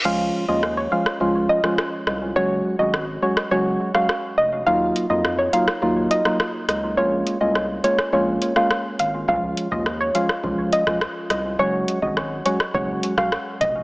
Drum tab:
CC |x---------------|----------------|----------------|----------------|
HH |----------------|----------------|--x---x---x---x-|--x---x---x---x-|
SD |----r--r---rr-r-|----r--r---rr---|----r--r---rr-r-|----r--r---rr---|
BD |----------------|----------------|----------------|----------------|

CC |----------------|----------------|
HH |--x---x---x---x-|--x---x---x---x-|
SD |----r--r---rr-r-|----r--r---rr---|
BD |o--o----o--o----|---o----o--o--o-|